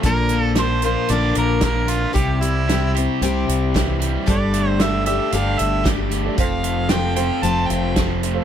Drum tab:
HH |xxxxxxxx|xxxxxxxx|xxxxxxxx|xxxxxxxx|
SD |--o---o-|--o---o-|--o---o-|--o---o-|
BD |o-----o-|o-----o-|o-----o-|o-----o-|